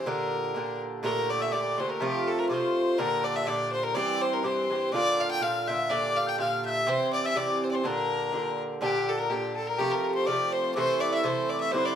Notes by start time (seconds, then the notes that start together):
0.06 A#2 D3 D4 G4 A#4
0.54 A#2 D3 D4 G4
1.03 A#2 D3 A3 G4 A#4 A#5
1.30 D5 D6
1.40 E5 E6
1.52 A#2 D3 A3 G4 D5 D6
1.78 A#2 D3 A3 G4 C5 C6
1.89 A#4 A#5
2.00 C3 F3 A3 F4 G4 G5 A5
2.26 A4 A5
2.38 A#4 A#5
2.49 C3 F3 A3 F4 C5 D6
2.54 C6
2.96 A#2 D3 D4 G4 A#4 A#5 C6
3.24 D5 D6
3.35 E5 E6
3.46 A#2 D3 D4 G4 D5 E6
3.50 D6
3.72 C5 C6
3.83 A#4 A#5
3.95 G2 E3 C4 G4 D5 D6
4.21 C5 D6
4.25 C6
4.33 A#4
4.43 G2 E3 C4 G4 C5 D6
4.48 C6
4.70 G2 E3 C4 G4
4.92 A#2 D3 D4 F4 D5 D6
5.20 F5 F6
5.30 G5 G6
5.41 A#2 D3 D4 F4 F5 F6
5.67 A#2 D3 D4 F4 E5 G6
5.71 E6
5.90 A#2 D3 D4 G4 D5 D6
6.17 F5
6.27 G5 G6
6.38 A#2 D3 D4 G4 F5 G6
6.42 F6
6.65 E5 G6
6.70 E6
6.86 C3 E3 C4 G4 C5 C6
7.12 D5 D6
7.23 E5 E6
7.35 C3 E3 C4 G4 D5 E6
7.40 D6
7.64 C5
7.71 C5 D5 C6
7.84 A#2 D3 D4 G4 A#4 C6
7.88 A#5
8.32 A#2 D3 D4 G4
8.81 A#2 D3 D4 G4 A5
8.87 G5
9.08 A4 A5
9.19 A#4 A#5
9.30 A#2 D3 D4 G4 G5
9.56 A4 A5
9.67 A#4 A#5
9.78 C3 F3 A3 G4 G5
9.91 A#4 C6
9.95 A#5
10.15 C5 C6
10.26 C3 F3 A3 D5 D6
10.30 G4
10.52 C5 C6
10.75 C3 E3 A3 E4 C5 D6
10.79 C6
11.00 D5 E5 D6
11.11 E5 E6
11.23 C3 E3 A3 E4 C5 D6
11.28 C6
11.49 D5 D6
11.60 E5 E6
11.71 G2 D3 C4 E4 C5 D6
11.78 C6
11.85 D5